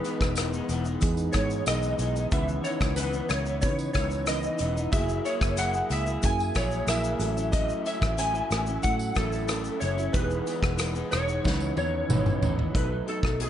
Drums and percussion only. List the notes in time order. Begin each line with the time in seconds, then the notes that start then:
0.04 closed hi-hat, tambourine, shaker
0.21 kick, cross-stick, tambourine, shaker
0.35 cross-stick, closed hi-hat, tambourine, shaker
0.53 shaker
0.69 closed hi-hat, tambourine, shaker
0.85 shaker
1.01 kick, closed hi-hat, tambourine, shaker
1.17 tambourine, shaker
1.33 kick, cross-stick, closed hi-hat, tambourine, shaker
1.50 tambourine, shaker
1.66 cross-stick, closed hi-hat, tambourine, shaker
1.82 tambourine, shaker
1.99 closed hi-hat, tambourine, shaker
2.16 tambourine, shaker
2.32 kick, closed hi-hat, shaker
2.48 shaker
2.64 closed hi-hat, tambourine, shaker
2.81 kick, cross-stick, tambourine, shaker
2.96 closed hi-hat, tambourine, shaker
3.13 shaker
3.29 cross-stick, closed hi-hat, tambourine, shaker
3.46 shaker
3.62 kick, closed hi-hat, tambourine, shaker
3.79 tambourine, shaker
3.94 kick, cross-stick, closed hi-hat, tambourine, shaker
4.11 tambourine, shaker
4.26 cross-stick, closed hi-hat, tambourine, shaker
4.43 shaker
4.59 closed hi-hat, tambourine, shaker
4.77 shaker
4.93 kick, closed hi-hat, shaker
5.09 shaker
5.25 closed hi-hat, tambourine, shaker
5.41 kick, cross-stick, tambourine, shaker
5.57 closed hi-hat, tambourine, shaker
5.74 shaker
5.91 closed hi-hat, tambourine, shaker
6.07 shaker
6.23 kick, closed hi-hat, tambourine, shaker
6.39 tambourine, shaker
6.55 kick, cross-stick, closed hi-hat, tambourine, shaker
6.71 tambourine, shaker
6.88 cross-stick, closed hi-hat, tambourine, shaker
7.04 shaker
7.20 closed hi-hat, tambourine, shaker
7.37 tambourine, shaker
7.53 kick, closed hi-hat, shaker
7.69 shaker
7.86 closed hi-hat, tambourine, shaker
8.02 kick, cross-stick, shaker
8.18 closed hi-hat, tambourine, shaker
8.35 shaker
8.51 cross-stick, closed hi-hat, tambourine, shaker
8.67 shaker
8.83 kick, closed hi-hat, tambourine, shaker
8.99 tambourine, shaker
9.15 kick, cross-stick, closed hi-hat, tambourine, shaker
9.32 tambourine, shaker
9.48 cross-stick, closed hi-hat, tambourine, shaker
9.64 tambourine, shaker
9.81 closed hi-hat, tambourine, shaker
9.98 tambourine, shaker
10.14 kick, closed hi-hat, shaker
10.30 shaker
10.47 closed hi-hat, tambourine, shaker
10.63 kick, cross-stick, shaker
10.78 cross-stick, closed hi-hat, tambourine, shaker
10.95 shaker
11.12 cross-stick, closed hi-hat, tambourine, shaker
11.29 shaker
11.44 kick, snare, tambourine
11.60 tambourine
11.77 high tom, tambourine
12.10 mid tom, tambourine
12.26 mid tom, tambourine
12.42 floor tom, tambourine
12.59 floor tom
12.75 kick, closed hi-hat
13.08 closed hi-hat
13.23 kick, cross-stick
13.40 closed hi-hat